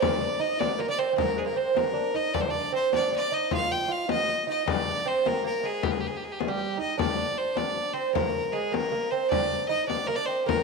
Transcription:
0.01 0.20 D4 medium
0.01 0.42 D5 medium
0.01 frame drum medium
0.21 0.39 D4 medium
0.39 0.60 D#4 medium
0.39 0.61 D#5 medium
0.59 0.80 D4 medium
0.59 0.82 D5 medium
0.59 frame drum medium
0.79 0.89 A#3 medium
0.79 0.89 A#4 medium
0.89 0.99 D4 medium
0.89 1.00 D5 medium
0.98 1.12 C4 medium
0.98 1.17 C5 medium
1.13 1.37 A#3 medium
1.13 1.16 C4 medium
1.17 1.39 A#4 medium
1.17 frame drum medium
1.36 1.47 G#3 medium
1.36 1.45 G#4 medium
1.46 1.55 A#3 medium
1.46 1.59 A#4 medium
1.56 1.74 C4 medium
1.56 1.79 C5 medium
1.74 1.95 A#3 medium
1.74 2.17 A#4 medium
1.74 frame drum medium
1.93 2.14 D4 medium
2.14 2.34 D#4 medium
2.14 2.35 D#5 medium
2.14 frame drum soft
2.34 2.47 D4 medium
2.34 2.42 D5 medium
2.34 frame drum medium
2.41 2.52 C5 medium
2.48 2.74 D4 medium
2.48 2.74 D5 medium
2.72 2.93 C4 medium
2.72 2.92 C5 medium
2.92 3.10 D4 medium
2.92 3.12 D5 medium
2.92 frame drum medium
3.12 3.31 D4 medium
3.12 3.35 D5 medium
3.32 3.51 D#4 medium
3.32 3.52 D#5 medium
3.51 3.87 F4 medium
3.51 3.73 F5 loud
3.51 frame drum medium
3.72 3.93 G5 medium
3.88 4.08 F4 medium
3.88 4.10 F5 medium
4.08 4.46 D#4 medium
4.08 4.46 D#5 medium
4.08 frame drum medium
4.47 4.66 D#4 medium
4.47 4.61 D#5 medium
4.61 4.71 D#5 medium
4.66 5.06 D4 medium
4.66 5.09 D5 medium
4.66 frame drum medium
5.05 5.25 C4 medium
5.05 5.28 C5 medium
5.25 5.43 A#3 medium
5.25 5.45 A#4 medium
5.25 frame drum medium
5.44 5.64 A#3 medium
5.44 5.66 A#4 medium
5.63 5.81 G#3 medium
5.63 5.85 G#4 medium
5.83 5.93 G4 medium
5.83 frame drum medium
5.91 6.02 G#4 medium
6.00 6.09 G4 medium
6.07 6.18 G#4 medium
6.17 6.25 G4 medium
6.21 6.33 G#4 medium
6.21 frame drum soft
6.32 6.40 G4 medium
6.39 6.47 G#3 medium
6.39 6.50 G#4 medium
6.39 frame drum medium
6.48 6.78 G3 medium
6.48 6.80 G4 medium
6.77 6.97 D#4 medium
6.77 6.98 D#5 medium
6.77 frame drum soft
6.98 7.16 D4 medium
6.98 7.39 D5 medium
6.98 frame drum medium
7.17 7.54 D4 medium
7.37 7.59 C5 medium
7.55 7.96 D4 medium
7.55 7.95 D5 medium
7.55 frame drum medium
7.93 8.13 C4 medium
7.93 8.13 C5 medium
8.13 8.54 A#3 medium
8.13 8.54 A#4 medium
8.13 frame drum medium
8.52 8.73 G#3 medium
8.52 8.73 G#4 medium
8.72 8.90 A#3 medium
8.72 9.12 A#4 medium
8.72 frame drum medium
8.92 9.11 A#3 medium
9.11 9.32 C4 medium
9.11 9.29 C5 medium
9.30 9.69 D4 medium
9.30 9.66 D5 medium
9.30 frame drum medium
9.68 9.87 D#4 medium
9.68 9.87 D#5 medium
9.87 10.08 D4 medium
9.87 10.08 D5 medium
9.87 frame drum medium
10.07 10.18 A#3 medium
10.07 10.17 A#4 medium
10.15 10.28 D4 medium
10.15 10.27 D5 medium
10.26 10.46 C4 medium
10.26 10.46 C5 medium
10.46 10.63 A#3 medium
10.46 10.63 A#4 medium
10.46 frame drum medium

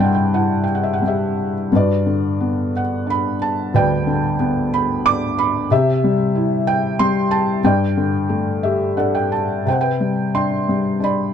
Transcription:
0.00 1.68 G2 medium
0.00 1.02 G3 soft
0.00 0.33 E4 soft
0.00 0.64 D5 medium
0.00 0.63 E5 soft
0.00 0.13 F#5 medium
0.00 0.15 G5 medium
0.00 1.73 A5 medium
0.00 1.74 B5 medium
0.00 1.74 C6 medium
0.15 0.35 G5 medium
0.33 1.67 E4 soft
0.33 0.63 F#5 medium
0.64 0.74 G5 medium
0.75 0.84 F#5 medium
0.83 0.93 E5 medium
0.93 1.03 F#5 medium
1.02 1.70 G3 soft
1.07 1.70 G4 soft
1.07 1.54 E5 medium
1.72 3.69 G2 medium
1.72 2.72 F#4 soft
1.72 2.72 B4 soft
1.72 2.79 D5 medium
2.06 3.36 D3 soft
2.41 3.69 B3 soft
2.77 3.09 F#5 medium
3.07 4.35 D4 soft
3.07 3.39 B5 medium
3.42 3.72 A5 medium
3.74 5.67 D2 medium
3.74 4.69 B4 medium
3.74 4.69 D5 medium
3.74 4.76 G5 medium
4.07 5.34 D3 soft
4.40 5.67 B3 medium
4.74 5.07 B5 medium
5.05 5.69 D4 soft
5.05 5.36 D6 medium
5.39 5.72 B5 medium
5.71 7.59 C3 medium
5.71 6.63 G4 medium
5.71 6.63 E5 medium
6.04 6.98 G3 soft
6.35 7.60 E4 soft
6.67 7.00 G5 medium
6.99 7.62 G3 medium
6.99 7.32 C6 medium
7.31 7.64 A5 medium
7.64 9.63 G2 medium
7.64 8.95 D5 medium
7.64 8.94 G5 medium
7.97 9.29 D3 medium
8.29 9.63 A3 medium
8.63 8.96 G4 medium
8.63 8.95 E5 medium
8.97 9.65 D4 medium
8.97 9.63 A4 medium
8.97 9.14 F#5 medium
9.15 9.31 G5 medium
9.32 9.64 A5 medium
9.65 11.34 C3 medium
9.65 9.75 C5 medium
9.65 9.74 G5 medium
9.73 9.80 F#5 medium
9.81 10.31 B4 soft
9.81 10.31 G5 medium
10.00 10.67 G3 soft
10.35 10.99 D4 soft
10.35 10.97 G5 soft
10.35 11.03 C6 medium
10.69 11.32 G3 soft
11.00 11.34 D4 soft
11.00 11.34 D5 medium
11.00 11.34 B5 medium

